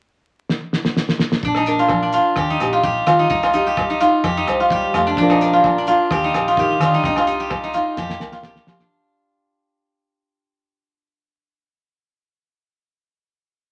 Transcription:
0.49 snare
0.73 snare
0.85 snare
0.97 snare
1.09 snare
1.19 snare
1.32 snare
1.43 fingered electric bass A#1, nylon-string guitar A#2, guzheng D4, kick
1.55 guzheng D#4, cross-stick, low agogo
1.66 guzheng D4, nylon-string guitar A#4, closed hi-hat
1.79 guzheng F4
1.89 nylon-string guitar F3, kick, cross-stick, low agogo
2.03 guzheng D4
2.12 guzheng F4, nylon-string guitar F4, closed hi-hat
2.36 fingered electric bass D#2, nylon-string guitar D#3, guzheng G4, kick, cross-stick, low agogo
2.50 guzheng D#4
2.60 fingered electric bass A#1, nylon-string guitar G4, cross-stick, closed hi-hat, low agogo
2.73 guzheng F4
2.84 nylon-string guitar G3, guzheng G4, kick
3.07 fingered electric bass D#3, guzheng F4, nylon-string guitar F4, cross-stick, closed hi-hat, low agogo
3.19 guzheng D#4
3.30 fingered electric bass C2, nylon-string guitar C3, guzheng D#4, kick
3.43 guzheng F4, cross-stick, low agogo
3.53 guzheng D#4, nylon-string guitar G4, closed hi-hat
3.67 guzheng G4
3.77 nylon-string guitar G3, kick, cross-stick, low agogo
3.90 guzheng D#4
4.00 nylon-string guitar D#4, guzheng F4, closed hi-hat
4.24 fingered electric bass F2, nylon-string guitar F3, guzheng G4, kick, cross-stick, low agogo
4.37 guzheng D#4
4.47 fingered electric bass C2, nylon-string guitar C5, cross-stick, closed hi-hat, low agogo
4.60 guzheng F4
4.70 nylon-string guitar G3, guzheng G4, kick
4.94 fingered electric bass F2, nylon-string guitar A3, guzheng F4, cross-stick, closed hi-hat, low agogo
5.07 guzheng D4
5.17 fingered electric bass A#1, nylon-string guitar A#2 F3 D4, guzheng D4, tonewheel organ F5 A#5 D6, kick
5.21 nylon-string guitar F4 A#4
5.30 guzheng D#4, cross-stick, low agogo
5.41 guzheng D4, nylon-string guitar A#4, closed hi-hat
5.53 guzheng F4
5.64 nylon-string guitar F3, kick, cross-stick, low agogo
5.78 guzheng D4
5.87 guzheng F4, nylon-string guitar F4, closed hi-hat
6.11 fingered electric bass D#2, nylon-string guitar D#3, guzheng G4, tonewheel organ G5 D#6, kick, cross-stick, low agogo
6.24 guzheng D#4
6.34 fingered electric bass A#1, nylon-string guitar G4, cross-stick, closed hi-hat, low agogo
6.48 guzheng F4
6.57 nylon-string guitar D#3, guzheng G4, kick
6.80 nylon-string guitar D3, fingered electric bass D#3, guzheng F4, cross-stick, closed hi-hat, low agogo
6.94 guzheng D#4
7.04 fingered electric bass C2, nylon-string guitar C3, guzheng D#4, tonewheel organ D#5 G5 C6, kick
7.16 guzheng F4, cross-stick, low agogo
7.27 guzheng D#4, nylon-string guitar G4, closed hi-hat
7.40 guzheng G4
7.50 nylon-string guitar G3, kick, cross-stick, low agogo
7.64 guzheng D#4
7.73 nylon-string guitar D#4, guzheng F4, closed hi-hat
7.95 fingered electric bass F2, guzheng G4, tonewheel organ F5 A5, kick, snare, low agogo
7.99 nylon-string guitar F3
8.10 snare
8.20 fingered electric bass C2, nylon-string guitar A#4, snare, low agogo
8.32 guzheng F4, snare
8.43 nylon-string guitar C4, guzheng G4, kick, snare
8.56 snare
8.67 fingered electric bass F3, guzheng F4, nylon-string guitar G4, snare, low agogo
8.79 guzheng D4, snare

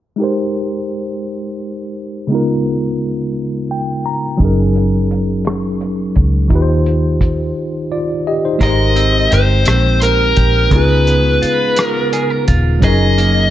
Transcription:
0.16 tine electric piano G#3 D#4 G4
0.22 tine electric piano A#4 C5
2.27 tine electric piano C#3 G#3 B3
2.32 tine electric piano D#4 F4 A#4
3.71 tine electric piano G5
4.06 tine electric piano A#5
4.37 fingered electric bass F#1, tine electric piano F#3 C#4 D#4, kick, closed hi-hat
4.43 tine electric piano G#4 A#4
4.76 closed hi-hat
5.11 closed hi-hat
5.45 cross-stick, closed hi-hat
5.81 closed hi-hat
6.16 fingered electric bass C#2, kick, closed hi-hat
6.48 fingered electric bass D#2, tine electric piano D#3 D#4 F4, kick, closed hi-hat
6.54 tine electric piano G4 B4
6.62 tine electric piano C5
6.86 closed hi-hat
7.21 kick, closed hi-hat
7.92 tine electric piano F4 D5
8.27 tine electric piano G4 D#5
8.45 tine electric piano D#4 C5
8.59 fingered electric bass G#1, tine electric piano G#3 D#4 G4, clean electric guitar G#3 A#4, kick, closed hi-hat
8.63 tine electric piano A#4 C5, lead electric guitar D#5
8.96 clean electric guitar C4, closed hi-hat
9.31 fingered electric bass G1, clean electric guitar G4, lead electric guitar C5, closed hi-hat
9.66 fingered electric bass A#1, clean electric guitar C4, cross-stick, closed hi-hat
10.02 clean electric guitar A#4, lead electric guitar A#4, closed hi-hat
10.36 fingered electric bass A#1, clean electric guitar G4, kick, closed hi-hat
10.69 fingered electric bass C#2, tine electric piano C#3 G#3 B3, clean electric guitar C#3 A#4, kick, closed hi-hat
10.73 tine electric piano D#4 F4 G#4, lead electric guitar B4
11.07 clean electric guitar B3, closed hi-hat
11.42 clean electric guitar F4, muted fingered electric bass stroke, closed hi-hat
11.76 clean electric guitar B3, cross-stick, closed hi-hat
11.82 lead electric guitar A#4
12.13 clean electric guitar G#4, closed hi-hat
12.30 clean electric guitar A#4
12.48 fingered electric bass D#1, clean electric guitar F4, kick, closed hi-hat
12.79 fingered electric bass F#1, tine electric piano F#3 C#4 D#4, clean electric guitar F#3, kick, closed hi-hat
12.84 clean electric guitar G#4, tine electric piano G#4 A#4, lead electric guitar D#5
13.18 clean electric guitar A#3, closed hi-hat

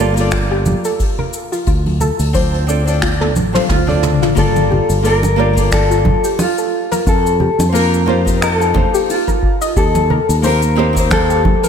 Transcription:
Already playing: fretless electric bass G1, nylon-string guitar A#3 F4
0.00 nylon-string guitar G4 A4 D5
0.14 nylon-string guitar A#3 F4 G4, open hi-hat, cabasa
0.19 nylon-string guitar A4 D5
0.31 synth pluck F4, finger snap, kick, open hi-hat, cabasa
0.51 synth pluck G4
0.66 high conga, low conga, cabasa
0.85 synth pluck A4, open hi-hat, cabasa
1.00 kick, open hi-hat, cabasa
1.19 synth pluck A#4, low conga
1.33 cabasa
1.52 synth pluck F4, open hi-hat, cabasa
1.66 fretless electric bass D2, synth pluck F4, kick, open hi-hat, cabasa
1.86 open hi-hat, high conga
2.00 synth pluck A4, low conga, cabasa
2.19 fretless electric bass D2, open hi-hat, cabasa
2.33 nylon-string guitar C4 D4 F4 C5, synth pluck C5, kick, open hi-hat, high conga, cabasa
2.54 open hi-hat
2.67 nylon-string guitar C4 D4 F4 A4 D5, synth pluck D5, cabasa
2.86 nylon-string guitar C4 D4 F4 A4 D5, open hi-hat, cabasa
3.02 synth pluck F4, finger snap, kick, open hi-hat, high tom, cabasa
3.21 synth pluck A4, open hi-hat, high tom
3.36 fretless electric bass A1, high conga, low conga, cabasa
3.53 nylon-string guitar C4 D4 F4 A4 F5, synth pluck C5, open hi-hat, mid tom, cabasa
3.69 fretless electric bass D2, clean electric guitar F4, kick, open hi-hat, mid tom, cabasa
3.86 nylon-string guitar C4 D4 F4 A4 D5, synth pluck D5, open hi-hat, low conga
4.03 mid tom, cabasa
4.22 fretless electric bass A1, synth pluck F4, mid tom, open hi-hat, cabasa
4.35 fretless electric bass G1, nylon-string guitar A#3 F4 G4 A4 D5, synth pluck F4, kick, open hi-hat, cabasa
4.39 clean electric guitar A4
4.56 muted conga, cabasa
4.71 synth pluck G4, low conga
4.89 fretless electric bass G1, open hi-hat, cabasa
5.02 nylon-string guitar A#3 F4 G4 A4 D5, synth pluck A4, open hi-hat, cabasa
5.07 clean electric guitar A#4
5.23 muted conga, cabasa
5.36 nylon-string guitar A#3 F4 G4 A4 D5, synth pluck A#4
5.53 nylon-string guitar A#3 F4 G4, kick
5.57 nylon-string guitar A4 D5, open hi-hat, cabasa
5.72 clean electric guitar A4, synth pluck D5, finger snap, kick, open hi-hat, muted conga, cabasa
5.91 synth pluck F4, cabasa
6.05 kick, high conga, low conga
6.24 synth pluck G4, open hi-hat, cabasa
6.39 clean electric guitar F4, open hi-hat, muted conga, cabasa
6.58 synth pluck A4, cabasa
6.91 synth pluck A#4, open hi-hat, muted conga, cabasa
7.07 fretless electric bass F2, synth pluck F4, clean electric guitar A4, kick, cabasa
7.27 cabasa
7.40 synth pluck G4, low conga
7.59 fretless electric bass F2, open hi-hat, muted conga, cabasa
7.69 nylon-string guitar A#3 D#4, clean electric guitar C5
7.74 nylon-string guitar F4 A#4, synth pluck A#4, clean electric guitar A#4, open hi-hat, cabasa
7.94 cabasa
8.06 nylon-string guitar A#3 D#4 F4 G4 C5, synth pluck C5, muted conga
8.25 nylon-string guitar A#3 D#4 F4 G4 C5, kick, open hi-hat, cabasa
8.41 clean electric guitar A#4, synth pluck D#5, finger snap, open hi-hat, cabasa
8.55 clean electric guitar A4
8.60 synth pluck F4, cabasa
8.74 nylon-string guitar A#3 D#4 F4 G4 C5, kick, muted conga, high conga, low conga
8.94 synth pluck G4, open hi-hat, cabasa
9.10 clean electric guitar F4, open hi-hat, cabasa
9.28 synth pluck A#4, kick, muted conga, cabasa
9.43 kick
9.61 synth pluck D#5, open hi-hat, cabasa
9.76 fretless electric bass D#2, synth pluck G4, clean electric guitar A4, kick, open hi-hat, cabasa
9.95 muted conga, cabasa
10.10 synth pluck A#4, low conga
10.29 fretless electric bass D#2, open hi-hat, cabasa
10.42 nylon-string guitar A#3 C4 D#4 G4 C5, clean electric guitar A#4, synth pluck C5, open hi-hat, muted conga, cabasa
10.62 cabasa
10.76 nylon-string guitar A#3 C4 D#4 G4 C5, synth pluck D#5
10.93 nylon-string guitar A#3 C4 D#4, kick, open hi-hat, cabasa
10.98 nylon-string guitar G4 C5
11.11 clean electric guitar A4, synth pluck G5, finger snap, kick, open hi-hat, muted conga, cabasa
11.30 synth pluck G4, cabasa
11.45 kick, high conga, low conga
11.63 synth pluck A#4, open hi-hat, muted conga, cabasa

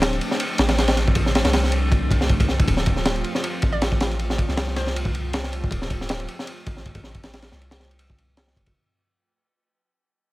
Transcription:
Already playing: 808-style bass D1, analog synth pad F3 A3 C4 D4
0.02 snare, ride
0.13 ride
0.21 ride
0.31 snare
0.40 ride
0.58 808-style bass A1, snare, ride
0.69 snare, ride
0.78 snare, ride
0.88 snare, ride
0.97 snare, ride
1.08 kick
1.15 kick, ride
1.26 snare
1.35 snare, ride
1.45 808-style bass C2, snare, ride
1.53 snare, ride
1.64 snare
1.72 ride
1.92 kick, ride
2.11 kick, ride
2.21 snare
2.29 kick, ride
2.40 kick, ride
2.49 snare
2.60 808-style bass C2, kick, ride
2.68 808-style bass D1, analog synth pad F4, kick, ride
2.77 snare
2.86 kick, ride
2.96 snare
3.05 snare, ride
3.16 ride
3.24 ride
3.35 snare
3.44 ride
3.62 808-style bass A1, kick, ride
3.72 synth pluck D5
3.82 snare, ride
3.92 kick
4.00 snare, ride
4.11 ride
4.19 ride
4.30 snare
4.38 kick, ride
4.49 808-style bass C2, snare
4.57 snare, ride
4.68 snare
4.76 synth pluck C5, snare, ride
4.87 snare
4.96 ride
5.05 kick
5.15 ride
5.33 snare, ride
5.44 snare
5.53 ride
5.64 808-style bass C2, kick
5.71 808-style bass D1, kick, ride
5.82 snare
5.90 kick, ride
6.01 snare
6.09 snare, ride
6.20 ride
6.28 ride
6.39 snare
6.47 ride
6.66 808-style bass A1, kick, ride
6.77 snare
6.86 kick, ride
6.95 kick, ride
7.04 snare
7.15 kick, ride
7.23 snare, ride
7.33 snare, ride
7.42 snare, ride
7.52 808-style bass C2, snare
7.62 ride
7.71 snare, ride
7.80 snare
7.91 ride
7.99 ride
8.10 kick
8.18 ride
8.37 snare, ride
8.47 snare
8.56 808-style bass F1, kick, ride
8.66 kick, ride

